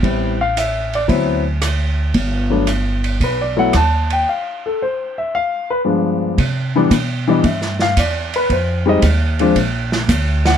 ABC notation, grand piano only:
X:1
M:4/4
L:1/8
Q:"Swing" 1/4=113
K:G
V:1 name="Grand piano"
z =f e d z4 | z4 (3B d f a g | =f A c e f B z2 | [K:C] z3 _e =e f d B |
c _e z4 z ^f |]
V:2 name="Grand piano"
[G,B,CE] z3 [F,B,CE] z3 | z [F,A,B,D] z3 [F,A,B,E] z2 | z6 [G,,=F,_A,B,D]2 | [K:C] z [E,G,B,D] z [E,G,B,D] z4 |
z [G,_A,C_E] z [F,A,CD] z4 |]